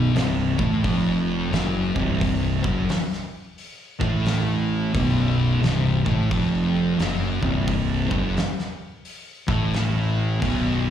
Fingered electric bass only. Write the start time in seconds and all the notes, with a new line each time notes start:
Already playing: B0
0.15 C1
0.60 A1
0.85 F1
1.53 F#1
1.96 C1
2.65 F#1
4.01 A1
4.95 B0
5.63 C1
6.06 A1
6.31 F1
6.98 F#1
7.43 C1
8.11 F#1
9.49 A1
10.42 B0